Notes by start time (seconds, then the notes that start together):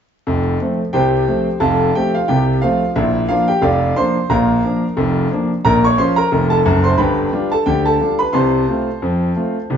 0.27 F1 F2
0.61 F3 A3 C4
0.93 C2 C3 G4 C5 G5
1.28 F3 A3 C4
1.60 F1 F2 A4 F5 A5
1.95 F3 A3 C4 G4 G5
2.14 F4 F5
2.28 C2 C3 G4 G5
2.62 F3 A3 C4 F4 F5
2.96 A#1 A#2 E4 E5
3.29 F3 A#3 D4 F4 F5
3.48 G4 G5
3.62 F1 F2 F4 D5 F5
3.96 F3 A#3 D4 C5 C6
4.30 A#1 A#2 A#4 F5 A#5
4.64 F3 A#3 D4
4.97 F1 F2
5.31 F3 A#3 D4
5.65 A#1 A#2 A#4 A#5
5.84 C#5 C#6
5.98 F3 C#4 F4 C5 C6
6.16 A#4 A#5
6.32 F1 F2
6.50 A4 A5
6.66 F#1 F#2
6.84 C5 C6
6.98 G1 G2 B4 G5 B5
7.32 G3 D4 F4
7.51 A4 A5
7.66 D2 D3 G4 G5
7.85 A4 A5
8.01 G3 D4 F4
8.19 B4 B5
8.33 C2 C3 C5 A5 C6
8.68 A3 C4 F4
9.02 F2 F3
9.36 A3 C4 F4
9.70 C2 C3